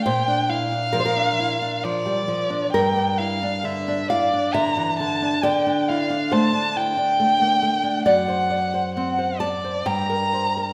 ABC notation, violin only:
X:1
M:3/4
L:1/8
Q:1/4=67
K:Dm
V:1 name="Violin"
g f3 d2 | g f e d b a | g f a g3 | [K:Dphr] ^f2 f d b2 |]